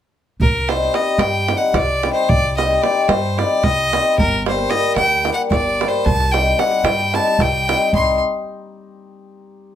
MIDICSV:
0, 0, Header, 1, 5, 480
1, 0, Start_track
1, 0, Tempo, 537153
1, 364, Time_signature, 7, 3, 24, 8
1, 8713, End_track
2, 0, Start_track
2, 0, Title_t, "Fiddle"
2, 0, Program_c, 0, 110
2, 367, Note_on_c, 0, 70, 83
2, 614, Note_on_c, 0, 72, 72
2, 627, Note_off_c, 0, 70, 0
2, 850, Note_on_c, 0, 75, 73
2, 864, Note_off_c, 0, 72, 0
2, 1066, Note_on_c, 0, 79, 85
2, 1079, Note_off_c, 0, 75, 0
2, 1408, Note_on_c, 0, 78, 72
2, 1421, Note_off_c, 0, 79, 0
2, 1567, Note_on_c, 0, 74, 89
2, 1580, Note_off_c, 0, 78, 0
2, 1897, Note_off_c, 0, 74, 0
2, 1903, Note_on_c, 0, 72, 77
2, 2045, Note_on_c, 0, 74, 95
2, 2058, Note_off_c, 0, 72, 0
2, 2290, Note_off_c, 0, 74, 0
2, 2295, Note_on_c, 0, 75, 64
2, 2451, Note_off_c, 0, 75, 0
2, 2451, Note_on_c, 0, 75, 64
2, 2519, Note_on_c, 0, 74, 78
2, 2532, Note_off_c, 0, 75, 0
2, 2692, Note_off_c, 0, 74, 0
2, 2692, Note_on_c, 0, 74, 61
2, 2754, Note_on_c, 0, 72, 75
2, 2767, Note_off_c, 0, 74, 0
2, 3024, Note_on_c, 0, 74, 80
2, 3037, Note_off_c, 0, 72, 0
2, 3250, Note_on_c, 0, 75, 97
2, 3263, Note_off_c, 0, 74, 0
2, 3736, Note_off_c, 0, 75, 0
2, 3742, Note_on_c, 0, 70, 91
2, 3972, Note_off_c, 0, 70, 0
2, 4002, Note_on_c, 0, 72, 76
2, 4198, Note_on_c, 0, 75, 93
2, 4212, Note_off_c, 0, 72, 0
2, 4425, Note_off_c, 0, 75, 0
2, 4431, Note_on_c, 0, 79, 96
2, 4749, Note_off_c, 0, 79, 0
2, 4769, Note_on_c, 0, 78, 72
2, 4839, Note_off_c, 0, 78, 0
2, 4916, Note_on_c, 0, 74, 90
2, 5258, Note_on_c, 0, 72, 80
2, 5272, Note_off_c, 0, 74, 0
2, 5408, Note_on_c, 0, 81, 97
2, 5421, Note_off_c, 0, 72, 0
2, 5647, Note_on_c, 0, 79, 90
2, 5661, Note_off_c, 0, 81, 0
2, 5890, Note_on_c, 0, 78, 84
2, 5903, Note_off_c, 0, 79, 0
2, 6115, Note_on_c, 0, 79, 90
2, 6129, Note_off_c, 0, 78, 0
2, 6386, Note_on_c, 0, 81, 91
2, 6399, Note_off_c, 0, 79, 0
2, 6626, Note_on_c, 0, 79, 93
2, 6640, Note_off_c, 0, 81, 0
2, 7099, Note_off_c, 0, 79, 0
2, 7104, Note_on_c, 0, 84, 66
2, 7328, Note_off_c, 0, 84, 0
2, 8713, End_track
3, 0, Start_track
3, 0, Title_t, "Hammered dulcimer"
3, 0, Program_c, 1, 15
3, 609, Note_on_c, 1, 55, 58
3, 615, Note_on_c, 1, 60, 46
3, 625, Note_on_c, 1, 63, 49
3, 627, Note_on_c, 1, 67, 56
3, 767, Note_off_c, 1, 60, 0
3, 772, Note_off_c, 1, 63, 0
3, 773, Note_off_c, 1, 67, 0
3, 828, Note_off_c, 1, 55, 0
3, 839, Note_on_c, 1, 55, 55
3, 846, Note_on_c, 1, 60, 50
3, 853, Note_on_c, 1, 63, 50
3, 857, Note_on_c, 1, 67, 64
3, 996, Note_off_c, 1, 60, 0
3, 999, Note_off_c, 1, 63, 0
3, 1001, Note_off_c, 1, 67, 0
3, 1321, Note_off_c, 1, 55, 0
3, 1332, Note_on_c, 1, 55, 55
3, 1336, Note_on_c, 1, 60, 51
3, 1344, Note_on_c, 1, 63, 55
3, 1348, Note_on_c, 1, 67, 58
3, 1489, Note_off_c, 1, 60, 0
3, 1493, Note_off_c, 1, 63, 0
3, 1495, Note_off_c, 1, 67, 0
3, 1815, Note_off_c, 1, 55, 0
3, 1825, Note_on_c, 1, 55, 62
3, 1831, Note_on_c, 1, 60, 58
3, 1836, Note_on_c, 1, 63, 55
3, 1842, Note_on_c, 1, 67, 66
3, 1984, Note_off_c, 1, 60, 0
3, 1987, Note_off_c, 1, 63, 0
3, 1990, Note_off_c, 1, 67, 0
3, 2294, Note_off_c, 1, 55, 0
3, 2304, Note_on_c, 1, 55, 54
3, 2310, Note_on_c, 1, 60, 51
3, 2314, Note_on_c, 1, 63, 55
3, 2322, Note_on_c, 1, 67, 62
3, 2460, Note_off_c, 1, 60, 0
3, 2462, Note_off_c, 1, 63, 0
3, 2466, Note_off_c, 1, 67, 0
3, 2509, Note_off_c, 1, 55, 0
3, 2520, Note_on_c, 1, 55, 61
3, 2524, Note_on_c, 1, 60, 53
3, 2531, Note_on_c, 1, 63, 59
3, 2537, Note_on_c, 1, 67, 72
3, 2679, Note_off_c, 1, 60, 0
3, 2683, Note_off_c, 1, 63, 0
3, 2686, Note_off_c, 1, 67, 0
3, 2996, Note_off_c, 1, 55, 0
3, 3007, Note_on_c, 1, 55, 59
3, 3015, Note_on_c, 1, 60, 55
3, 3019, Note_on_c, 1, 63, 51
3, 3024, Note_on_c, 1, 67, 59
3, 3173, Note_off_c, 1, 60, 0
3, 3174, Note_off_c, 1, 63, 0
3, 3177, Note_off_c, 1, 67, 0
3, 3491, Note_off_c, 1, 55, 0
3, 3501, Note_on_c, 1, 55, 60
3, 3509, Note_on_c, 1, 60, 62
3, 3511, Note_on_c, 1, 63, 55
3, 3516, Note_on_c, 1, 67, 71
3, 3666, Note_off_c, 1, 60, 0
3, 3667, Note_off_c, 1, 63, 0
3, 3669, Note_off_c, 1, 67, 0
3, 3786, Note_off_c, 1, 55, 0
3, 3985, Note_on_c, 1, 55, 62
3, 3992, Note_on_c, 1, 58, 53
3, 3996, Note_on_c, 1, 62, 47
3, 4005, Note_on_c, 1, 67, 61
3, 4142, Note_off_c, 1, 58, 0
3, 4144, Note_off_c, 1, 62, 0
3, 4149, Note_off_c, 1, 67, 0
3, 4204, Note_off_c, 1, 55, 0
3, 4215, Note_on_c, 1, 55, 64
3, 4216, Note_on_c, 1, 58, 54
3, 4221, Note_on_c, 1, 62, 50
3, 4228, Note_on_c, 1, 67, 61
3, 4366, Note_off_c, 1, 58, 0
3, 4368, Note_off_c, 1, 62, 0
3, 4372, Note_off_c, 1, 67, 0
3, 4683, Note_off_c, 1, 55, 0
3, 4694, Note_on_c, 1, 55, 59
3, 4701, Note_on_c, 1, 58, 57
3, 4705, Note_on_c, 1, 62, 53
3, 4711, Note_on_c, 1, 67, 72
3, 4855, Note_off_c, 1, 58, 0
3, 4857, Note_off_c, 1, 62, 0
3, 4860, Note_off_c, 1, 67, 0
3, 5184, Note_off_c, 1, 55, 0
3, 5195, Note_on_c, 1, 55, 68
3, 5199, Note_on_c, 1, 58, 55
3, 5202, Note_on_c, 1, 62, 58
3, 5212, Note_on_c, 1, 67, 67
3, 5350, Note_off_c, 1, 58, 0
3, 5352, Note_off_c, 1, 62, 0
3, 5356, Note_off_c, 1, 67, 0
3, 5465, Note_off_c, 1, 55, 0
3, 5664, Note_on_c, 1, 55, 60
3, 5666, Note_on_c, 1, 60, 50
3, 5671, Note_on_c, 1, 63, 50
3, 5679, Note_on_c, 1, 67, 66
3, 5817, Note_off_c, 1, 60, 0
3, 5820, Note_off_c, 1, 63, 0
3, 5824, Note_off_c, 1, 67, 0
3, 5868, Note_off_c, 1, 55, 0
3, 5879, Note_on_c, 1, 55, 57
3, 5882, Note_on_c, 1, 60, 52
3, 5892, Note_on_c, 1, 63, 48
3, 5897, Note_on_c, 1, 67, 75
3, 6037, Note_off_c, 1, 60, 0
3, 6041, Note_off_c, 1, 63, 0
3, 6044, Note_off_c, 1, 67, 0
3, 6359, Note_off_c, 1, 55, 0
3, 6370, Note_on_c, 1, 55, 56
3, 6375, Note_on_c, 1, 60, 57
3, 6379, Note_on_c, 1, 63, 54
3, 6389, Note_on_c, 1, 67, 68
3, 6529, Note_off_c, 1, 60, 0
3, 6531, Note_off_c, 1, 63, 0
3, 6536, Note_off_c, 1, 67, 0
3, 6851, Note_off_c, 1, 55, 0
3, 6862, Note_on_c, 1, 55, 58
3, 6870, Note_on_c, 1, 60, 55
3, 6874, Note_on_c, 1, 63, 51
3, 6882, Note_on_c, 1, 67, 61
3, 7021, Note_off_c, 1, 60, 0
3, 7024, Note_off_c, 1, 63, 0
3, 7028, Note_off_c, 1, 67, 0
3, 7092, Note_off_c, 1, 55, 0
3, 7099, Note_on_c, 1, 60, 58
3, 7100, Note_on_c, 1, 55, 79
3, 7102, Note_on_c, 1, 63, 69
3, 7105, Note_on_c, 1, 67, 71
3, 7326, Note_off_c, 1, 60, 0
3, 7326, Note_off_c, 1, 63, 0
3, 7327, Note_off_c, 1, 55, 0
3, 7327, Note_off_c, 1, 67, 0
3, 8713, End_track
4, 0, Start_track
4, 0, Title_t, "Upright bass"
4, 0, Program_c, 2, 32
4, 354, Note_on_c, 2, 36, 72
4, 778, Note_off_c, 2, 36, 0
4, 1055, Note_on_c, 2, 43, 87
4, 1355, Note_off_c, 2, 43, 0
4, 1550, Note_on_c, 2, 36, 75
4, 1850, Note_off_c, 2, 36, 0
4, 2047, Note_on_c, 2, 36, 88
4, 2469, Note_off_c, 2, 36, 0
4, 2756, Note_on_c, 2, 43, 85
4, 3052, Note_off_c, 2, 43, 0
4, 3246, Note_on_c, 2, 36, 75
4, 3543, Note_off_c, 2, 36, 0
4, 3749, Note_on_c, 2, 31, 94
4, 4164, Note_off_c, 2, 31, 0
4, 4433, Note_on_c, 2, 38, 81
4, 4729, Note_off_c, 2, 38, 0
4, 4918, Note_on_c, 2, 31, 72
4, 5216, Note_off_c, 2, 31, 0
4, 5412, Note_on_c, 2, 36, 96
4, 5830, Note_off_c, 2, 36, 0
4, 6108, Note_on_c, 2, 43, 79
4, 6403, Note_off_c, 2, 43, 0
4, 6598, Note_on_c, 2, 36, 78
4, 6893, Note_off_c, 2, 36, 0
4, 7082, Note_on_c, 2, 36, 60
4, 7316, Note_off_c, 2, 36, 0
4, 8713, End_track
5, 0, Start_track
5, 0, Title_t, "Davul"
5, 370, Note_on_c, 9, 43, 80
5, 459, Note_off_c, 9, 43, 0
5, 614, Note_on_c, 9, 37, 63
5, 704, Note_off_c, 9, 37, 0
5, 739, Note_on_c, 9, 37, 21
5, 828, Note_off_c, 9, 37, 0
5, 841, Note_on_c, 9, 37, 49
5, 931, Note_off_c, 9, 37, 0
5, 1066, Note_on_c, 9, 37, 65
5, 1156, Note_off_c, 9, 37, 0
5, 1327, Note_on_c, 9, 37, 57
5, 1416, Note_off_c, 9, 37, 0
5, 1557, Note_on_c, 9, 37, 61
5, 1557, Note_on_c, 9, 43, 58
5, 1647, Note_off_c, 9, 37, 0
5, 1647, Note_off_c, 9, 43, 0
5, 1817, Note_on_c, 9, 37, 56
5, 1907, Note_off_c, 9, 37, 0
5, 2051, Note_on_c, 9, 43, 72
5, 2141, Note_off_c, 9, 43, 0
5, 2309, Note_on_c, 9, 37, 59
5, 2399, Note_off_c, 9, 37, 0
5, 2420, Note_on_c, 9, 37, 24
5, 2509, Note_off_c, 9, 37, 0
5, 2533, Note_on_c, 9, 37, 55
5, 2623, Note_off_c, 9, 37, 0
5, 2761, Note_on_c, 9, 37, 67
5, 2851, Note_off_c, 9, 37, 0
5, 3026, Note_on_c, 9, 37, 55
5, 3116, Note_off_c, 9, 37, 0
5, 3248, Note_on_c, 9, 37, 47
5, 3248, Note_on_c, 9, 43, 53
5, 3338, Note_off_c, 9, 37, 0
5, 3338, Note_off_c, 9, 43, 0
5, 3514, Note_on_c, 9, 37, 61
5, 3603, Note_off_c, 9, 37, 0
5, 3737, Note_on_c, 9, 43, 65
5, 3827, Note_off_c, 9, 43, 0
5, 3989, Note_on_c, 9, 37, 63
5, 4078, Note_off_c, 9, 37, 0
5, 4099, Note_on_c, 9, 37, 23
5, 4188, Note_off_c, 9, 37, 0
5, 4205, Note_on_c, 9, 37, 59
5, 4295, Note_off_c, 9, 37, 0
5, 4436, Note_on_c, 9, 37, 56
5, 4526, Note_off_c, 9, 37, 0
5, 4691, Note_on_c, 9, 37, 57
5, 4780, Note_off_c, 9, 37, 0
5, 4931, Note_on_c, 9, 37, 51
5, 4931, Note_on_c, 9, 43, 54
5, 5020, Note_off_c, 9, 37, 0
5, 5020, Note_off_c, 9, 43, 0
5, 5192, Note_on_c, 9, 37, 61
5, 5281, Note_off_c, 9, 37, 0
5, 5420, Note_on_c, 9, 43, 73
5, 5510, Note_off_c, 9, 43, 0
5, 5543, Note_on_c, 9, 37, 27
5, 5632, Note_off_c, 9, 37, 0
5, 5664, Note_on_c, 9, 37, 61
5, 5754, Note_off_c, 9, 37, 0
5, 5890, Note_on_c, 9, 37, 66
5, 5979, Note_off_c, 9, 37, 0
5, 6000, Note_on_c, 9, 37, 23
5, 6089, Note_off_c, 9, 37, 0
5, 6118, Note_on_c, 9, 37, 70
5, 6207, Note_off_c, 9, 37, 0
5, 6248, Note_on_c, 9, 37, 22
5, 6338, Note_off_c, 9, 37, 0
5, 6378, Note_on_c, 9, 37, 51
5, 6468, Note_off_c, 9, 37, 0
5, 6501, Note_on_c, 9, 37, 21
5, 6590, Note_off_c, 9, 37, 0
5, 6613, Note_on_c, 9, 37, 53
5, 6613, Note_on_c, 9, 43, 53
5, 6703, Note_off_c, 9, 37, 0
5, 6703, Note_off_c, 9, 43, 0
5, 6873, Note_on_c, 9, 37, 65
5, 6962, Note_off_c, 9, 37, 0
5, 6984, Note_on_c, 9, 37, 21
5, 7073, Note_off_c, 9, 37, 0
5, 7095, Note_on_c, 9, 43, 59
5, 7184, Note_off_c, 9, 43, 0
5, 8713, End_track
0, 0, End_of_file